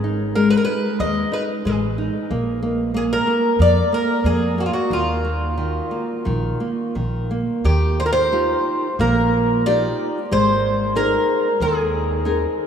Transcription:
0.00 0.54 G#1 medium
0.00 0.34 G#3 medium
0.00 0.34 D#4 soft
0.35 0.66 G#3 soft
0.35 0.50 A#4 medium
0.50 0.57 B4 medium
0.57 0.64 A#4 medium
0.65 0.98 D#4 soft
0.65 1.00 B4 medium
0.99 1.21 D#2 medium
0.99 1.31 G#3 soft
0.99 1.33 D#5 medium
1.32 1.64 D#4 soft
1.32 1.42 B4 medium
1.65 2.08 A1 medium
1.65 1.97 G#3 soft
1.65 1.75 G#4 medium
1.98 2.29 D#4 soft
2.30 3.14 A#1 medium
2.30 2.61 A#3 medium
2.63 2.93 A#3 soft
2.94 3.26 A#3 soft
2.94 3.02 G#4 medium
3.13 3.61 A#4 medium
3.27 3.58 A#3 soft
3.59 3.80 F2 medium
3.59 3.91 A#3 medium
3.59 3.94 D5 medium
3.92 4.24 A#3 soft
3.92 4.27 A#4 medium
4.24 4.67 F2 medium
4.24 4.57 A#3 medium
4.24 4.59 G#4 medium
4.58 4.90 A#3 soft
4.58 4.65 F#4 medium
4.66 4.72 F4 medium
4.73 4.92 F#4 medium
4.90 5.78 D#2 medium
4.90 5.56 D#3 medium
4.90 6.93 F4 medium
5.25 5.57 A#3 soft
5.58 5.90 D#3 soft
5.91 6.24 A#3 soft
6.25 6.49 A#1 medium
6.25 6.59 D#3 soft
6.60 6.94 A#3 soft
6.95 7.41 A#1 medium
6.95 7.29 D#3 soft
7.31 7.64 A#3 soft
7.64 8.52 D#2 medium
7.64 8.30 D#3 medium
7.64 8.00 G4 medium
8.00 8.05 C5 medium
8.06 8.12 A#4 medium
8.13 8.96 C5 medium
8.32 8.86 D#4 soft
8.32 8.86 F4 soft
8.32 8.86 G4 soft
8.99 9.85 A#1 medium
8.99 9.64 A#3 medium
8.99 9.66 A#4 medium
9.66 10.19 D#4 soft
9.66 10.19 F4 soft
9.66 10.19 G4 soft
9.66 10.28 D5 medium
10.31 11.16 G#1 medium
10.31 10.95 G#3 medium
10.31 10.96 C5 medium
10.96 11.47 D#4 soft
10.96 11.47 G#4 soft
10.96 11.48 A#4 medium
10.96 11.63 A#4 medium
11.60 12.44 D#2 medium
11.60 12.23 D#3 medium
11.60 12.54 G#4 medium
12.25 12.67 D#4 soft
12.25 12.67 G#4 soft
12.25 12.67 A#4 soft

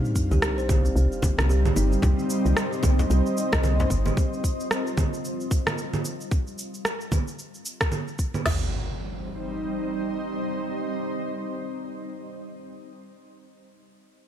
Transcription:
0.00 6.32 G3 medium
0.00 1.36 F5 loud
0.00 sub drop medium
0.05 6.31 C4 medium
0.05 shaker soft
0.16 kick medium
0.16 shaker medium
0.31 0.39 C2 medium
0.31 0.42 G4 loud
0.31 high conga medium
0.31 shaker soft
0.36 3.84 D#4 medium
0.42 cross-stick medium
0.42 shaker soft
0.58 0.68 C5 medium
0.58 6.31 C5 medium
0.58 shaker soft
0.69 0.90 C2 medium
0.69 kick loud
0.69 high bongo soft
0.69 low conga medium
0.69 shaker medium
0.85 1.22 C4 medium
0.85 shaker soft
0.89 6.31 D#5 medium
0.96 1.07 C2 medium
0.96 shaker soft
1.12 shaker soft
1.22 1.37 C4 medium
1.22 kick loud
1.22 high conga medium
1.22 low conga medium
1.22 shaker medium
1.38 1.71 C2 loud
1.38 cross-stick medium
1.38 low conga medium
1.38 shaker soft
1.49 1.58 G4 medium
1.49 shaker soft
1.65 low conga medium
1.65 shaker soft
1.76 1.97 G1 medium
1.76 2.02 D#4 medium
1.76 high bongo medium
1.76 shaker medium
1.92 high conga soft
1.92 shaker soft
2.02 2.14 C2 loud
2.02 kick loud
2.02 low conga medium
2.02 shaker soft
2.19 high conga soft
2.19 shaker soft
2.30 shaker medium
2.45 2.53 C2 medium
2.45 high conga medium
2.45 shaker soft
2.57 cross-stick medium
2.57 shaker soft
2.73 shaker soft
2.83 3.04 C2 medium
2.83 kick loud
2.83 high bongo soft
2.83 low conga medium
2.83 shaker medium
2.99 low conga medium
2.99 shaker soft
3.10 3.21 C2 medium
3.10 high bongo medium
3.10 shaker soft
3.26 shaker soft
3.37 shaker medium
3.53 3.85 C2 loud
3.53 kick loud
3.53 cross-stick medium
3.53 high bongo medium
3.53 shaker soft
3.63 high bongo medium
3.63 low conga medium
3.63 shaker soft
3.67 6.31 F4 medium
3.80 low conga medium
3.80 shaker soft
3.90 4.11 G1 medium
3.90 kick medium
3.90 high conga medium
3.90 shaker medium
4.06 high bongo medium
4.06 low conga medium
4.06 shaker soft
4.17 kick loud
4.17 shaker soft
4.33 shaker soft
4.44 kick medium
4.44 shaker medium
4.60 shaker soft
4.71 cross-stick medium
4.71 shaker soft
4.87 shaker soft
4.97 kick loud
4.97 low conga medium
4.97 shaker medium
5.14 shaker soft
5.25 shaker soft
5.41 shaker soft
5.51 kick loud
5.51 shaker medium
5.67 cross-stick medium
5.67 low conga medium
5.67 shaker soft
5.78 shaker soft
5.93 low conga medium
5.93 shaker soft
6.05 shaker medium
6.21 shaker soft
6.31 kick loud
6.31 shaker soft
6.47 shaker soft
6.58 shaker medium
6.74 shaker soft
6.85 cross-stick medium
6.85 shaker soft
7.01 shaker soft
7.12 kick loud
7.12 low conga medium
7.12 shaker medium
7.28 shaker soft
7.39 shaker soft
7.54 shaker soft
7.66 shaker medium
7.81 kick medium
7.81 cross-stick medium
7.81 shaker soft
7.92 low conga medium
7.92 shaker soft
8.08 shaker soft
8.19 kick medium
8.19 shaker medium
8.34 low conga medium
8.34 shaker soft
8.46 11.52 G3 medium
8.46 snare medium
8.46 floor tom medium
8.46 crash medium
8.46 impact medium
8.55 11.62 C4 medium
8.63 11.70 D#4 medium
8.71 11.77 C5 medium
8.78 11.85 D#5 medium

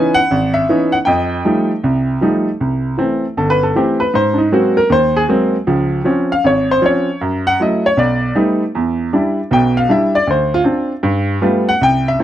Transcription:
0.00 0.18 E3 medium
0.00 0.17 B3 soft
0.00 0.18 C#4 medium
0.00 0.18 D#4 medium
0.00 0.27 B4 medium
0.00 0.12 G#5 medium
0.14 0.54 F#5 loud
0.31 0.63 G#1 medium
0.54 0.89 E5 medium
0.69 0.94 E3 medium
0.69 0.95 B3 medium
0.69 0.95 C#4 medium
0.69 0.95 D#4 medium
0.92 0.97 F#5 medium
1.05 1.39 F2 medium
1.05 2.18 D#5 medium
1.05 2.16 G5 medium
1.45 1.71 F3 medium
1.45 1.71 G3 soft
1.45 1.71 A3 soft
1.45 1.71 D#4 medium
1.84 2.16 C2 medium
2.21 2.47 F3 medium
2.21 2.48 G3 medium
2.21 2.48 A3 medium
2.21 2.48 D#4 medium
2.61 2.93 C2 medium
2.98 3.24 E3 soft
2.98 3.24 A3 soft
2.98 3.24 C4 medium
3.37 3.70 G1 medium
3.37 3.49 A4 medium
3.50 3.62 B4 medium
3.63 3.75 A4 medium
3.76 4.01 E3 medium
3.76 4.01 A3 soft
3.76 4.01 C4 medium
3.76 3.99 G4 medium
4.00 4.13 B4 medium
4.14 4.46 G#2 medium
4.14 4.38 C5 medium
4.34 4.36 D4 soft
4.38 4.51 D#4 medium
4.52 4.78 F#3 medium
4.52 4.78 G#3 soft
4.52 4.78 A#3 soft
4.52 4.78 C4 medium
4.52 4.76 F#4 medium
4.77 4.90 A#4 medium
4.90 5.23 D#2 medium
4.90 5.15 C5 medium
5.16 5.24 G#4 medium
5.29 5.54 F#3 medium
5.29 5.55 G#3 medium
5.29 5.55 A#3 medium
5.29 5.55 C4 medium
5.67 6.00 C#2 medium
5.67 6.00 F3 medium
6.04 6.31 F3 medium
6.04 6.31 C4 soft
6.04 6.31 C#4 medium
6.32 6.44 F5 medium
6.44 6.77 G#1 medium
6.44 6.69 C#5 medium
6.71 6.83 C5 medium
6.82 7.08 F3 medium
6.82 7.08 C4 soft
6.82 7.08 C#4 medium
6.86 7.19 C#5 medium
7.21 7.54 F#2 medium
7.47 7.59 F#5 medium
7.60 7.85 F#3 medium
7.60 7.86 A3 soft
7.60 7.86 E4 medium
7.60 7.84 D#5 medium
7.86 7.98 C#5 medium
7.97 8.30 B1 medium
7.97 8.34 D5 medium
8.35 8.62 G3 medium
8.35 8.61 A3 soft
8.35 8.62 B3 soft
8.35 8.62 D#4 medium
8.75 9.08 E2 medium
9.13 9.39 G3 medium
9.13 9.39 D4 soft
9.13 9.39 E4 medium
9.51 9.84 B1 medium
9.51 9.84 B2 medium
9.51 9.76 G5 medium
9.77 9.89 F5 medium
9.89 10.15 G3 medium
9.89 10.15 D4 medium
9.89 10.15 E4 medium
9.89 10.14 E5 medium
10.15 10.28 D5 medium
10.27 10.60 D2 medium
10.27 10.53 C5 medium
10.54 10.62 F4 medium
10.64 10.91 C4 medium
10.64 10.92 D4 soft
10.64 10.92 F4 medium
11.03 11.37 G2 medium
11.42 11.68 G3 medium
11.42 11.68 A3 medium
11.42 11.68 B3 medium
11.42 11.69 F4 medium
11.69 11.81 F#5 medium
11.81 12.14 C2 medium
11.81 12.06 G5 medium
12.08 12.20 E5 medium
12.19 12.23 A3 medium
12.19 12.23 C4 medium
12.19 12.23 E4 medium

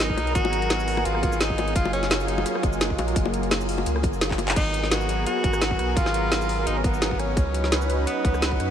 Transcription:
0.00 0.16 G#1 loud
0.00 1.71 F#3 medium
0.00 1.73 B3 medium
0.00 0.31 D#4 loud
0.00 4.52 G#4 medium
0.00 1.73 A#4 medium
0.00 snare loud
0.00 closed hi-hat medium
0.00 cabasa medium
0.10 kick medium
0.17 0.34 B1 loud
0.17 closed hi-hat medium
0.17 high bongo medium
0.27 closed hi-hat soft
0.35 1.04 G#1 loud
0.35 1.07 F#4 loud
0.35 kick loud
0.35 closed hi-hat medium
0.35 cabasa medium
0.45 high bongo loud
0.53 closed hi-hat medium
0.53 cabasa soft
0.62 closed hi-hat soft
0.70 snare loud
0.70 closed hi-hat loud
0.70 high bongo medium
0.70 cabasa medium
0.80 cabasa medium
0.88 open hi-hat medium
0.97 cross-stick soft
0.97 high bongo medium
1.05 1.74 G#1 loud
1.05 1.42 F4 loud
1.05 closed hi-hat medium
1.05 cabasa medium
1.15 cross-stick medium
1.23 kick loud
1.23 closed hi-hat medium
1.23 high bongo medium
1.23 cabasa soft
1.32 cabasa medium
1.40 1.75 D#4 loud
1.40 snare loud
1.40 closed hi-hat medium
1.40 cabasa medium
1.50 kick medium
1.58 cross-stick soft
1.58 closed hi-hat medium
1.58 high bongo medium
1.68 closed hi-hat soft
1.75 2.45 F#1 loud
1.75 4.53 F#3 medium
1.75 4.53 A#3 medium
1.75 1.92 F4 loud
1.75 4.53 F4 medium
1.75 kick loud
1.75 closed hi-hat loud
1.75 cabasa medium
1.85 high bongo medium
1.93 2.30 C#4 loud
1.93 closed hi-hat medium
1.93 cabasa soft
2.03 snare soft
2.03 closed hi-hat soft
2.10 snare loud
2.10 closed hi-hat loud
2.10 high bongo medium
2.10 cabasa medium
2.20 cabasa medium
2.28 2.47 D#4 loud
2.28 closed hi-hat medium
2.38 high bongo medium
2.46 2.65 C#4 loud
2.46 cross-stick soft
2.46 closed hi-hat medium
2.46 cabasa medium
2.55 cross-stick medium
2.63 2.97 F#1 loud
2.63 3.34 G#3 medium
2.63 kick loud
2.63 closed hi-hat medium
2.63 high bongo medium
2.63 cabasa soft
2.73 cabasa medium
2.81 snare loud
2.81 closed hi-hat medium
2.81 cabasa medium
2.90 kick medium
2.99 3.15 A#1 loud
2.99 closed hi-hat medium
2.99 high bongo loud
3.08 closed hi-hat soft
3.16 3.85 F#1 loud
3.16 kick loud
3.16 closed hi-hat loud
3.16 cabasa medium
3.26 high bongo medium
3.34 closed hi-hat medium
3.34 cabasa soft
3.43 closed hi-hat soft
3.51 snare loud
3.51 closed hi-hat loud
3.51 high bongo medium
3.51 cabasa medium
3.61 cabasa medium
3.69 open hi-hat medium
3.69 cabasa soft
3.78 high bongo medium
3.86 4.05 C#2 medium
3.86 closed hi-hat loud
3.86 cabasa medium
3.96 cross-stick medium
4.03 4.38 F#1 loud
4.03 kick loud
4.03 closed hi-hat medium
4.03 high bongo medium
4.03 cabasa soft
4.13 cabasa medium
4.21 snare loud
4.21 closed hi-hat loud
4.21 cabasa medium
4.31 kick medium
4.31 clap medium
4.38 4.55 F#1 loud
4.38 closed hi-hat medium
4.38 high bongo medium
4.48 clap loud
4.48 closed hi-hat soft
4.56 5.25 G#1 loud
4.56 8.71 F#3 medium
4.56 7.34 B3 medium
4.56 4.93 D#4 loud
4.56 7.34 G#4 medium
4.56 7.34 A#4 loud
4.56 kick loud
4.56 closed hi-hat loud
4.56 crash loud
4.56 cabasa medium
4.74 closed hi-hat medium
4.84 snare soft
4.91 5.26 F#4 loud
4.91 snare loud
4.91 closed hi-hat loud
4.91 cabasa soft
5.01 cabasa medium
5.09 closed hi-hat medium
5.09 cabasa soft
5.26 5.98 F#4 loud
5.26 closed hi-hat loud
5.26 cabasa soft
5.44 5.78 G#1 loud
5.44 kick loud
5.44 closed hi-hat medium
5.53 cross-stick soft
5.53 cabasa medium
5.62 snare loud
5.62 closed hi-hat loud
5.62 cabasa medium
5.71 kick medium
5.79 5.95 B1 loud
5.79 cross-stick soft
5.79 closed hi-hat medium
5.96 6.66 G#1 loud
5.96 6.68 F4 loud
5.96 kick loud
5.96 closed hi-hat medium
5.96 cabasa soft
6.06 cross-stick soft
6.06 snare soft
6.14 closed hi-hat medium
6.32 snare loud
6.32 closed hi-hat medium
6.32 cabasa soft
6.41 cabasa medium
6.49 open hi-hat medium
6.49 cabasa soft
6.66 7.36 G#1 medium
6.66 6.79 D#4 loud
6.66 closed hi-hat loud
6.66 cabasa soft
6.78 6.85 C#4 medium
6.84 7.20 B3 loud
6.84 kick loud
6.84 closed hi-hat medium
6.94 cabasa medium
7.02 snare loud
7.02 closed hi-hat loud
7.02 cabasa soft
7.11 kick medium
7.19 8.06 C#4 loud
7.19 cross-stick soft
7.19 closed hi-hat medium
7.37 8.06 C#2 loud
7.37 8.71 C#4 medium
7.37 8.71 D#4 medium
7.37 8.71 B4 loud
7.37 kick loud
7.37 closed hi-hat medium
7.37 cabasa soft
7.54 closed hi-hat medium
7.64 snare soft
7.72 snare loud
7.72 closed hi-hat medium
7.72 cabasa soft
7.81 cabasa medium
7.90 closed hi-hat medium
7.90 cabasa soft
8.07 8.71 B3 loud
8.07 closed hi-hat medium
8.07 cabasa soft
8.25 8.58 C#2 loud
8.25 kick loud
8.25 closed hi-hat medium
8.34 cross-stick medium
8.34 cabasa medium
8.42 snare loud
8.42 closed hi-hat medium
8.42 cabasa soft
8.52 kick medium
8.60 8.71 F#2 loud
8.60 cross-stick soft
8.60 closed hi-hat medium

